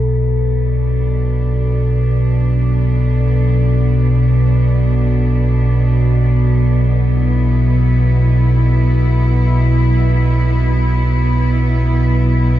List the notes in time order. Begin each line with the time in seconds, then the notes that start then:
Already playing: B1 B2 F#3 B3 A4
0.68 D4
7.12 E4